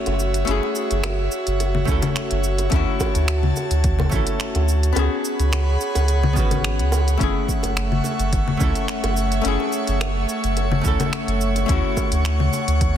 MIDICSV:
0, 0, Header, 1, 6, 480
1, 0, Start_track
1, 0, Key_signature, 3, "minor"
1, 0, Tempo, 560748
1, 408, Time_signature, 4, 2, 24, 8
1, 11102, End_track
2, 0, Start_track
2, 0, Title_t, "Synth texture"
2, 0, Program_c, 0, 99
2, 6172, Note_on_c, 0, 85, 79
2, 6177, Note_on_c, 0, 73, 86
2, 11102, Note_off_c, 0, 73, 0
2, 11102, Note_off_c, 0, 85, 0
2, 11102, End_track
3, 0, Start_track
3, 0, Title_t, "Analog synth pad"
3, 0, Program_c, 1, 89
3, 0, Note_on_c, 1, 66, 88
3, 0, Note_on_c, 1, 73, 82
3, 0, Note_on_c, 1, 76, 82
3, 2294, Note_off_c, 1, 76, 0
3, 2330, Note_on_c, 1, 81, 101
3, 4212, Note_off_c, 1, 66, 0
3, 4213, Note_off_c, 1, 73, 0
3, 4230, Note_off_c, 1, 81, 0
3, 4241, Note_on_c, 1, 78, 85
3, 4242, Note_on_c, 1, 83, 93
3, 4244, Note_on_c, 1, 68, 88
3, 4246, Note_on_c, 1, 73, 81
3, 6146, Note_off_c, 1, 83, 0
3, 6147, Note_off_c, 1, 68, 0
3, 6148, Note_off_c, 1, 73, 0
3, 6159, Note_on_c, 1, 57, 82
3, 6160, Note_on_c, 1, 85, 97
3, 6161, Note_on_c, 1, 76, 83
3, 9969, Note_off_c, 1, 85, 0
3, 9970, Note_off_c, 1, 76, 0
3, 9970, Note_off_c, 1, 78, 0
3, 10005, Note_on_c, 1, 78, 84
3, 10008, Note_on_c, 1, 85, 98
3, 11102, Note_off_c, 1, 57, 0
3, 11102, Note_off_c, 1, 78, 0
3, 11102, Note_off_c, 1, 85, 0
3, 11102, End_track
4, 0, Start_track
4, 0, Title_t, "Hollow-body jazz guitar"
4, 0, Program_c, 2, 26
4, 0, Note_on_c, 2, 57, 90
4, 0, Note_on_c, 2, 61, 77
4, 0, Note_on_c, 2, 64, 76
4, 0, Note_on_c, 2, 69, 94
4, 369, Note_off_c, 2, 57, 0
4, 378, Note_off_c, 2, 61, 0
4, 384, Note_on_c, 2, 57, 95
4, 385, Note_off_c, 2, 64, 0
4, 394, Note_off_c, 2, 69, 0
4, 400, Note_on_c, 2, 61, 83
4, 416, Note_on_c, 2, 64, 81
4, 435, Note_on_c, 2, 68, 107
4, 1569, Note_off_c, 2, 57, 0
4, 1577, Note_off_c, 2, 61, 0
4, 1585, Note_off_c, 2, 64, 0
4, 1586, Note_on_c, 2, 57, 87
4, 1595, Note_off_c, 2, 68, 0
4, 1604, Note_on_c, 2, 61, 81
4, 1619, Note_on_c, 2, 64, 79
4, 1638, Note_on_c, 2, 69, 89
4, 2290, Note_off_c, 2, 57, 0
4, 2299, Note_off_c, 2, 61, 0
4, 2306, Note_off_c, 2, 64, 0
4, 2309, Note_on_c, 2, 57, 94
4, 2316, Note_off_c, 2, 69, 0
4, 2324, Note_on_c, 2, 61, 88
4, 2344, Note_on_c, 2, 64, 89
4, 2359, Note_on_c, 2, 66, 97
4, 3492, Note_off_c, 2, 57, 0
4, 3499, Note_off_c, 2, 61, 0
4, 3505, Note_on_c, 2, 57, 81
4, 3509, Note_off_c, 2, 64, 0
4, 3517, Note_off_c, 2, 66, 0
4, 3522, Note_on_c, 2, 61, 81
4, 3538, Note_on_c, 2, 64, 78
4, 3557, Note_on_c, 2, 69, 93
4, 4210, Note_off_c, 2, 57, 0
4, 4216, Note_on_c, 2, 59, 86
4, 4218, Note_off_c, 2, 61, 0
4, 4226, Note_off_c, 2, 64, 0
4, 4236, Note_off_c, 2, 69, 0
4, 4236, Note_on_c, 2, 61, 84
4, 4253, Note_on_c, 2, 66, 83
4, 4270, Note_on_c, 2, 68, 96
4, 5405, Note_off_c, 2, 59, 0
4, 5415, Note_off_c, 2, 61, 0
4, 5420, Note_on_c, 2, 59, 83
4, 5424, Note_off_c, 2, 66, 0
4, 5432, Note_off_c, 2, 68, 0
4, 5440, Note_on_c, 2, 61, 81
4, 5456, Note_on_c, 2, 66, 80
4, 5473, Note_on_c, 2, 71, 94
4, 6127, Note_off_c, 2, 59, 0
4, 6137, Note_off_c, 2, 61, 0
4, 6142, Note_on_c, 2, 57, 90
4, 6145, Note_off_c, 2, 66, 0
4, 6154, Note_off_c, 2, 71, 0
4, 6156, Note_on_c, 2, 61, 84
4, 6175, Note_on_c, 2, 64, 85
4, 6191, Note_on_c, 2, 68, 101
4, 7328, Note_off_c, 2, 57, 0
4, 7335, Note_off_c, 2, 61, 0
4, 7339, Note_on_c, 2, 57, 84
4, 7345, Note_off_c, 2, 64, 0
4, 7353, Note_off_c, 2, 68, 0
4, 7356, Note_on_c, 2, 61, 78
4, 7374, Note_on_c, 2, 64, 75
4, 7390, Note_on_c, 2, 69, 90
4, 8047, Note_off_c, 2, 57, 0
4, 8055, Note_off_c, 2, 61, 0
4, 8059, Note_on_c, 2, 57, 97
4, 8064, Note_off_c, 2, 64, 0
4, 8072, Note_off_c, 2, 69, 0
4, 8077, Note_on_c, 2, 61, 84
4, 8096, Note_on_c, 2, 64, 87
4, 8113, Note_on_c, 2, 68, 102
4, 9247, Note_off_c, 2, 57, 0
4, 9256, Note_off_c, 2, 61, 0
4, 9257, Note_on_c, 2, 57, 87
4, 9265, Note_off_c, 2, 64, 0
4, 9274, Note_off_c, 2, 68, 0
4, 9275, Note_on_c, 2, 61, 77
4, 9291, Note_on_c, 2, 64, 78
4, 9307, Note_on_c, 2, 69, 93
4, 9966, Note_off_c, 2, 57, 0
4, 9975, Note_off_c, 2, 61, 0
4, 9981, Note_on_c, 2, 57, 94
4, 9982, Note_off_c, 2, 64, 0
4, 9991, Note_off_c, 2, 69, 0
4, 9998, Note_on_c, 2, 61, 83
4, 10015, Note_on_c, 2, 64, 86
4, 10030, Note_on_c, 2, 66, 104
4, 11102, Note_off_c, 2, 57, 0
4, 11102, Note_off_c, 2, 61, 0
4, 11102, Note_off_c, 2, 64, 0
4, 11102, Note_off_c, 2, 66, 0
4, 11102, End_track
5, 0, Start_track
5, 0, Title_t, "Sub bass"
5, 0, Program_c, 3, 38
5, 56, Note_on_c, 3, 30, 96
5, 378, Note_off_c, 3, 30, 0
5, 409, Note_on_c, 3, 30, 102
5, 515, Note_off_c, 3, 30, 0
5, 779, Note_on_c, 3, 30, 88
5, 1100, Note_off_c, 3, 30, 0
5, 1258, Note_on_c, 3, 30, 88
5, 1579, Note_off_c, 3, 30, 0
5, 1610, Note_on_c, 3, 37, 96
5, 1716, Note_off_c, 3, 37, 0
5, 1979, Note_on_c, 3, 30, 95
5, 2299, Note_off_c, 3, 30, 0
5, 2328, Note_on_c, 3, 38, 108
5, 2435, Note_off_c, 3, 38, 0
5, 2698, Note_on_c, 3, 38, 84
5, 3019, Note_off_c, 3, 38, 0
5, 3172, Note_on_c, 3, 38, 90
5, 3496, Note_off_c, 3, 38, 0
5, 3529, Note_on_c, 3, 33, 94
5, 3635, Note_off_c, 3, 33, 0
5, 3895, Note_on_c, 3, 38, 93
5, 4218, Note_off_c, 3, 38, 0
5, 4244, Note_on_c, 3, 37, 109
5, 4353, Note_off_c, 3, 37, 0
5, 4616, Note_on_c, 3, 37, 91
5, 4938, Note_off_c, 3, 37, 0
5, 5097, Note_on_c, 3, 37, 91
5, 5448, Note_on_c, 3, 32, 93
5, 5461, Note_off_c, 3, 37, 0
5, 5816, Note_on_c, 3, 37, 91
5, 5829, Note_off_c, 3, 32, 0
5, 6138, Note_off_c, 3, 37, 0
5, 6168, Note_on_c, 3, 30, 105
5, 6275, Note_off_c, 3, 30, 0
5, 6538, Note_on_c, 3, 30, 89
5, 6859, Note_off_c, 3, 30, 0
5, 7011, Note_on_c, 3, 30, 91
5, 7336, Note_off_c, 3, 30, 0
5, 7368, Note_on_c, 3, 37, 102
5, 7475, Note_off_c, 3, 37, 0
5, 7733, Note_on_c, 3, 30, 98
5, 8056, Note_off_c, 3, 30, 0
5, 8088, Note_on_c, 3, 30, 113
5, 8195, Note_off_c, 3, 30, 0
5, 8458, Note_on_c, 3, 30, 87
5, 8779, Note_off_c, 3, 30, 0
5, 8935, Note_on_c, 3, 30, 89
5, 9257, Note_off_c, 3, 30, 0
5, 9288, Note_on_c, 3, 37, 101
5, 9395, Note_off_c, 3, 37, 0
5, 9651, Note_on_c, 3, 30, 101
5, 9975, Note_off_c, 3, 30, 0
5, 10006, Note_on_c, 3, 38, 115
5, 10114, Note_off_c, 3, 38, 0
5, 10372, Note_on_c, 3, 38, 88
5, 10696, Note_off_c, 3, 38, 0
5, 10850, Note_on_c, 3, 38, 92
5, 11102, Note_off_c, 3, 38, 0
5, 11102, End_track
6, 0, Start_track
6, 0, Title_t, "Drums"
6, 53, Note_on_c, 9, 42, 54
6, 57, Note_on_c, 9, 60, 76
6, 139, Note_off_c, 9, 42, 0
6, 143, Note_off_c, 9, 60, 0
6, 167, Note_on_c, 9, 82, 75
6, 253, Note_off_c, 9, 82, 0
6, 294, Note_on_c, 9, 42, 47
6, 295, Note_on_c, 9, 82, 42
6, 379, Note_off_c, 9, 42, 0
6, 380, Note_off_c, 9, 82, 0
6, 406, Note_on_c, 9, 42, 56
6, 407, Note_on_c, 9, 82, 37
6, 492, Note_off_c, 9, 42, 0
6, 493, Note_off_c, 9, 82, 0
6, 540, Note_on_c, 9, 60, 51
6, 625, Note_off_c, 9, 60, 0
6, 645, Note_on_c, 9, 82, 84
6, 731, Note_off_c, 9, 82, 0
6, 776, Note_on_c, 9, 42, 43
6, 778, Note_on_c, 9, 82, 45
6, 862, Note_off_c, 9, 42, 0
6, 863, Note_off_c, 9, 82, 0
6, 886, Note_on_c, 9, 26, 112
6, 886, Note_on_c, 9, 42, 56
6, 887, Note_on_c, 9, 60, 81
6, 888, Note_on_c, 9, 82, 35
6, 972, Note_off_c, 9, 26, 0
6, 972, Note_off_c, 9, 42, 0
6, 972, Note_off_c, 9, 60, 0
6, 973, Note_off_c, 9, 82, 0
6, 1127, Note_on_c, 9, 82, 78
6, 1213, Note_off_c, 9, 82, 0
6, 1256, Note_on_c, 9, 42, 45
6, 1257, Note_on_c, 9, 82, 46
6, 1342, Note_off_c, 9, 42, 0
6, 1343, Note_off_c, 9, 82, 0
6, 1371, Note_on_c, 9, 42, 54
6, 1372, Note_on_c, 9, 60, 53
6, 1372, Note_on_c, 9, 82, 34
6, 1456, Note_off_c, 9, 42, 0
6, 1457, Note_off_c, 9, 82, 0
6, 1458, Note_off_c, 9, 60, 0
6, 1496, Note_on_c, 9, 64, 74
6, 1581, Note_off_c, 9, 64, 0
6, 1607, Note_on_c, 9, 82, 87
6, 1608, Note_on_c, 9, 36, 103
6, 1693, Note_off_c, 9, 82, 0
6, 1694, Note_off_c, 9, 36, 0
6, 1731, Note_on_c, 9, 60, 81
6, 1733, Note_on_c, 9, 42, 47
6, 1733, Note_on_c, 9, 64, 73
6, 1735, Note_on_c, 9, 82, 46
6, 1817, Note_off_c, 9, 60, 0
6, 1819, Note_off_c, 9, 42, 0
6, 1819, Note_off_c, 9, 64, 0
6, 1820, Note_off_c, 9, 82, 0
6, 1847, Note_on_c, 9, 26, 101
6, 1847, Note_on_c, 9, 42, 53
6, 1848, Note_on_c, 9, 82, 33
6, 1933, Note_off_c, 9, 26, 0
6, 1933, Note_off_c, 9, 42, 0
6, 1934, Note_off_c, 9, 82, 0
6, 1975, Note_on_c, 9, 42, 53
6, 2060, Note_off_c, 9, 42, 0
6, 2087, Note_on_c, 9, 82, 78
6, 2172, Note_off_c, 9, 82, 0
6, 2213, Note_on_c, 9, 42, 43
6, 2214, Note_on_c, 9, 82, 44
6, 2216, Note_on_c, 9, 60, 53
6, 2298, Note_off_c, 9, 42, 0
6, 2299, Note_off_c, 9, 82, 0
6, 2302, Note_off_c, 9, 60, 0
6, 2327, Note_on_c, 9, 42, 56
6, 2328, Note_on_c, 9, 82, 36
6, 2329, Note_on_c, 9, 36, 123
6, 2412, Note_off_c, 9, 42, 0
6, 2413, Note_off_c, 9, 82, 0
6, 2415, Note_off_c, 9, 36, 0
6, 2568, Note_on_c, 9, 82, 81
6, 2569, Note_on_c, 9, 36, 63
6, 2573, Note_on_c, 9, 60, 90
6, 2654, Note_off_c, 9, 36, 0
6, 2654, Note_off_c, 9, 82, 0
6, 2658, Note_off_c, 9, 60, 0
6, 2697, Note_on_c, 9, 42, 44
6, 2698, Note_on_c, 9, 82, 46
6, 2782, Note_off_c, 9, 42, 0
6, 2783, Note_off_c, 9, 82, 0
6, 2808, Note_on_c, 9, 26, 102
6, 2808, Note_on_c, 9, 42, 54
6, 2809, Note_on_c, 9, 82, 34
6, 2893, Note_off_c, 9, 26, 0
6, 2893, Note_off_c, 9, 42, 0
6, 2895, Note_off_c, 9, 82, 0
6, 2937, Note_on_c, 9, 64, 60
6, 3023, Note_off_c, 9, 64, 0
6, 3049, Note_on_c, 9, 82, 82
6, 3056, Note_on_c, 9, 60, 52
6, 3134, Note_off_c, 9, 82, 0
6, 3141, Note_off_c, 9, 60, 0
6, 3175, Note_on_c, 9, 42, 45
6, 3176, Note_on_c, 9, 82, 46
6, 3261, Note_off_c, 9, 42, 0
6, 3262, Note_off_c, 9, 82, 0
6, 3286, Note_on_c, 9, 42, 53
6, 3287, Note_on_c, 9, 82, 34
6, 3289, Note_on_c, 9, 36, 111
6, 3371, Note_off_c, 9, 42, 0
6, 3372, Note_off_c, 9, 82, 0
6, 3374, Note_off_c, 9, 36, 0
6, 3413, Note_on_c, 9, 64, 75
6, 3420, Note_on_c, 9, 60, 74
6, 3498, Note_off_c, 9, 64, 0
6, 3506, Note_off_c, 9, 60, 0
6, 3525, Note_on_c, 9, 82, 80
6, 3529, Note_on_c, 9, 36, 110
6, 3611, Note_off_c, 9, 82, 0
6, 3614, Note_off_c, 9, 36, 0
6, 3652, Note_on_c, 9, 42, 45
6, 3653, Note_on_c, 9, 82, 47
6, 3737, Note_off_c, 9, 42, 0
6, 3739, Note_off_c, 9, 82, 0
6, 3765, Note_on_c, 9, 26, 107
6, 3765, Note_on_c, 9, 42, 56
6, 3766, Note_on_c, 9, 82, 34
6, 3850, Note_off_c, 9, 26, 0
6, 3850, Note_off_c, 9, 42, 0
6, 3851, Note_off_c, 9, 82, 0
6, 3894, Note_on_c, 9, 42, 49
6, 3900, Note_on_c, 9, 60, 57
6, 3980, Note_off_c, 9, 42, 0
6, 3986, Note_off_c, 9, 60, 0
6, 4010, Note_on_c, 9, 82, 80
6, 4095, Note_off_c, 9, 82, 0
6, 4138, Note_on_c, 9, 42, 44
6, 4139, Note_on_c, 9, 82, 45
6, 4223, Note_off_c, 9, 42, 0
6, 4224, Note_off_c, 9, 82, 0
6, 4247, Note_on_c, 9, 60, 83
6, 4250, Note_on_c, 9, 42, 50
6, 4251, Note_on_c, 9, 82, 35
6, 4333, Note_off_c, 9, 60, 0
6, 4336, Note_off_c, 9, 42, 0
6, 4337, Note_off_c, 9, 82, 0
6, 4492, Note_on_c, 9, 82, 83
6, 4578, Note_off_c, 9, 82, 0
6, 4619, Note_on_c, 9, 42, 40
6, 4620, Note_on_c, 9, 82, 46
6, 4704, Note_off_c, 9, 42, 0
6, 4705, Note_off_c, 9, 82, 0
6, 4725, Note_on_c, 9, 60, 49
6, 4731, Note_on_c, 9, 26, 102
6, 4731, Note_on_c, 9, 42, 55
6, 4732, Note_on_c, 9, 82, 35
6, 4811, Note_off_c, 9, 60, 0
6, 4816, Note_off_c, 9, 26, 0
6, 4816, Note_off_c, 9, 42, 0
6, 4817, Note_off_c, 9, 82, 0
6, 4972, Note_on_c, 9, 82, 83
6, 5057, Note_off_c, 9, 82, 0
6, 5095, Note_on_c, 9, 60, 81
6, 5099, Note_on_c, 9, 42, 40
6, 5100, Note_on_c, 9, 82, 47
6, 5181, Note_off_c, 9, 60, 0
6, 5184, Note_off_c, 9, 42, 0
6, 5186, Note_off_c, 9, 82, 0
6, 5207, Note_on_c, 9, 42, 52
6, 5208, Note_on_c, 9, 82, 33
6, 5293, Note_off_c, 9, 42, 0
6, 5294, Note_off_c, 9, 82, 0
6, 5337, Note_on_c, 9, 64, 76
6, 5423, Note_off_c, 9, 64, 0
6, 5447, Note_on_c, 9, 36, 110
6, 5449, Note_on_c, 9, 82, 81
6, 5532, Note_off_c, 9, 36, 0
6, 5535, Note_off_c, 9, 82, 0
6, 5572, Note_on_c, 9, 60, 55
6, 5574, Note_on_c, 9, 42, 43
6, 5574, Note_on_c, 9, 64, 70
6, 5576, Note_on_c, 9, 82, 46
6, 5658, Note_off_c, 9, 60, 0
6, 5660, Note_off_c, 9, 42, 0
6, 5660, Note_off_c, 9, 64, 0
6, 5661, Note_off_c, 9, 82, 0
6, 5688, Note_on_c, 9, 26, 96
6, 5688, Note_on_c, 9, 42, 51
6, 5689, Note_on_c, 9, 82, 34
6, 5773, Note_off_c, 9, 26, 0
6, 5773, Note_off_c, 9, 42, 0
6, 5774, Note_off_c, 9, 82, 0
6, 5816, Note_on_c, 9, 42, 49
6, 5902, Note_off_c, 9, 42, 0
6, 5924, Note_on_c, 9, 60, 88
6, 5930, Note_on_c, 9, 82, 77
6, 6010, Note_off_c, 9, 60, 0
6, 6016, Note_off_c, 9, 82, 0
6, 6059, Note_on_c, 9, 42, 42
6, 6060, Note_on_c, 9, 82, 47
6, 6144, Note_off_c, 9, 42, 0
6, 6145, Note_off_c, 9, 82, 0
6, 6167, Note_on_c, 9, 36, 116
6, 6172, Note_on_c, 9, 42, 56
6, 6173, Note_on_c, 9, 82, 34
6, 6252, Note_off_c, 9, 36, 0
6, 6258, Note_off_c, 9, 42, 0
6, 6259, Note_off_c, 9, 82, 0
6, 6407, Note_on_c, 9, 36, 62
6, 6412, Note_on_c, 9, 82, 76
6, 6493, Note_off_c, 9, 36, 0
6, 6497, Note_off_c, 9, 82, 0
6, 6531, Note_on_c, 9, 60, 57
6, 6537, Note_on_c, 9, 42, 43
6, 6538, Note_on_c, 9, 82, 45
6, 6617, Note_off_c, 9, 60, 0
6, 6623, Note_off_c, 9, 42, 0
6, 6624, Note_off_c, 9, 82, 0
6, 6650, Note_on_c, 9, 26, 94
6, 6650, Note_on_c, 9, 42, 52
6, 6651, Note_on_c, 9, 82, 34
6, 6735, Note_off_c, 9, 26, 0
6, 6735, Note_off_c, 9, 42, 0
6, 6737, Note_off_c, 9, 82, 0
6, 6779, Note_on_c, 9, 64, 62
6, 6864, Note_off_c, 9, 64, 0
6, 6882, Note_on_c, 9, 60, 76
6, 6890, Note_on_c, 9, 82, 77
6, 6968, Note_off_c, 9, 60, 0
6, 6975, Note_off_c, 9, 82, 0
6, 7015, Note_on_c, 9, 42, 42
6, 7016, Note_on_c, 9, 82, 45
6, 7101, Note_off_c, 9, 42, 0
6, 7102, Note_off_c, 9, 82, 0
6, 7127, Note_on_c, 9, 42, 55
6, 7128, Note_on_c, 9, 36, 104
6, 7129, Note_on_c, 9, 82, 34
6, 7213, Note_off_c, 9, 42, 0
6, 7214, Note_off_c, 9, 36, 0
6, 7214, Note_off_c, 9, 82, 0
6, 7256, Note_on_c, 9, 64, 81
6, 7342, Note_off_c, 9, 64, 0
6, 7365, Note_on_c, 9, 82, 80
6, 7368, Note_on_c, 9, 36, 108
6, 7371, Note_on_c, 9, 60, 56
6, 7451, Note_off_c, 9, 82, 0
6, 7453, Note_off_c, 9, 36, 0
6, 7457, Note_off_c, 9, 60, 0
6, 7494, Note_on_c, 9, 42, 40
6, 7495, Note_on_c, 9, 82, 43
6, 7580, Note_off_c, 9, 42, 0
6, 7581, Note_off_c, 9, 82, 0
6, 7604, Note_on_c, 9, 26, 91
6, 7604, Note_on_c, 9, 42, 55
6, 7605, Note_on_c, 9, 82, 32
6, 7690, Note_off_c, 9, 26, 0
6, 7690, Note_off_c, 9, 42, 0
6, 7691, Note_off_c, 9, 82, 0
6, 7736, Note_on_c, 9, 42, 50
6, 7736, Note_on_c, 9, 60, 79
6, 7822, Note_off_c, 9, 42, 0
6, 7822, Note_off_c, 9, 60, 0
6, 7848, Note_on_c, 9, 82, 77
6, 7933, Note_off_c, 9, 82, 0
6, 7976, Note_on_c, 9, 42, 41
6, 7977, Note_on_c, 9, 82, 44
6, 8061, Note_off_c, 9, 42, 0
6, 8063, Note_off_c, 9, 82, 0
6, 8087, Note_on_c, 9, 42, 58
6, 8088, Note_on_c, 9, 82, 31
6, 8173, Note_off_c, 9, 42, 0
6, 8174, Note_off_c, 9, 82, 0
6, 8218, Note_on_c, 9, 60, 53
6, 8304, Note_off_c, 9, 60, 0
6, 8325, Note_on_c, 9, 82, 78
6, 8410, Note_off_c, 9, 82, 0
6, 8453, Note_on_c, 9, 42, 45
6, 8454, Note_on_c, 9, 82, 41
6, 8539, Note_off_c, 9, 42, 0
6, 8540, Note_off_c, 9, 82, 0
6, 8567, Note_on_c, 9, 60, 76
6, 8569, Note_on_c, 9, 26, 90
6, 8569, Note_on_c, 9, 42, 57
6, 8570, Note_on_c, 9, 82, 33
6, 8653, Note_off_c, 9, 60, 0
6, 8654, Note_off_c, 9, 26, 0
6, 8654, Note_off_c, 9, 42, 0
6, 8655, Note_off_c, 9, 82, 0
6, 8808, Note_on_c, 9, 82, 82
6, 8894, Note_off_c, 9, 82, 0
6, 8935, Note_on_c, 9, 42, 44
6, 8936, Note_on_c, 9, 82, 42
6, 9020, Note_off_c, 9, 42, 0
6, 9021, Note_off_c, 9, 82, 0
6, 9046, Note_on_c, 9, 42, 54
6, 9047, Note_on_c, 9, 82, 31
6, 9050, Note_on_c, 9, 60, 50
6, 9131, Note_off_c, 9, 42, 0
6, 9132, Note_off_c, 9, 82, 0
6, 9135, Note_off_c, 9, 60, 0
6, 9173, Note_on_c, 9, 64, 78
6, 9258, Note_off_c, 9, 64, 0
6, 9284, Note_on_c, 9, 82, 78
6, 9288, Note_on_c, 9, 36, 99
6, 9370, Note_off_c, 9, 82, 0
6, 9374, Note_off_c, 9, 36, 0
6, 9414, Note_on_c, 9, 42, 43
6, 9414, Note_on_c, 9, 64, 78
6, 9415, Note_on_c, 9, 82, 44
6, 9420, Note_on_c, 9, 60, 78
6, 9500, Note_off_c, 9, 42, 0
6, 9500, Note_off_c, 9, 64, 0
6, 9501, Note_off_c, 9, 82, 0
6, 9506, Note_off_c, 9, 60, 0
6, 9526, Note_on_c, 9, 26, 91
6, 9526, Note_on_c, 9, 42, 52
6, 9527, Note_on_c, 9, 82, 33
6, 9611, Note_off_c, 9, 26, 0
6, 9611, Note_off_c, 9, 42, 0
6, 9612, Note_off_c, 9, 82, 0
6, 9658, Note_on_c, 9, 42, 49
6, 9743, Note_off_c, 9, 42, 0
6, 9767, Note_on_c, 9, 82, 79
6, 9853, Note_off_c, 9, 82, 0
6, 9894, Note_on_c, 9, 60, 53
6, 9896, Note_on_c, 9, 42, 42
6, 9897, Note_on_c, 9, 82, 41
6, 9979, Note_off_c, 9, 60, 0
6, 9981, Note_off_c, 9, 42, 0
6, 9982, Note_off_c, 9, 82, 0
6, 10007, Note_on_c, 9, 36, 108
6, 10009, Note_on_c, 9, 42, 60
6, 10010, Note_on_c, 9, 82, 33
6, 10093, Note_off_c, 9, 36, 0
6, 10094, Note_off_c, 9, 42, 0
6, 10095, Note_off_c, 9, 82, 0
6, 10245, Note_on_c, 9, 60, 75
6, 10247, Note_on_c, 9, 36, 59
6, 10248, Note_on_c, 9, 82, 73
6, 10331, Note_off_c, 9, 60, 0
6, 10333, Note_off_c, 9, 36, 0
6, 10333, Note_off_c, 9, 82, 0
6, 10373, Note_on_c, 9, 42, 50
6, 10374, Note_on_c, 9, 82, 42
6, 10459, Note_off_c, 9, 42, 0
6, 10460, Note_off_c, 9, 82, 0
6, 10486, Note_on_c, 9, 26, 102
6, 10486, Note_on_c, 9, 42, 54
6, 10487, Note_on_c, 9, 82, 31
6, 10572, Note_off_c, 9, 26, 0
6, 10572, Note_off_c, 9, 42, 0
6, 10573, Note_off_c, 9, 82, 0
6, 10614, Note_on_c, 9, 64, 65
6, 10700, Note_off_c, 9, 64, 0
6, 10727, Note_on_c, 9, 82, 76
6, 10731, Note_on_c, 9, 60, 55
6, 10812, Note_off_c, 9, 82, 0
6, 10816, Note_off_c, 9, 60, 0
6, 10854, Note_on_c, 9, 42, 48
6, 10855, Note_on_c, 9, 82, 42
6, 10940, Note_off_c, 9, 42, 0
6, 10941, Note_off_c, 9, 82, 0
6, 10966, Note_on_c, 9, 42, 58
6, 10967, Note_on_c, 9, 36, 97
6, 10967, Note_on_c, 9, 82, 33
6, 11051, Note_off_c, 9, 42, 0
6, 11052, Note_off_c, 9, 36, 0
6, 11052, Note_off_c, 9, 82, 0
6, 11102, End_track
0, 0, End_of_file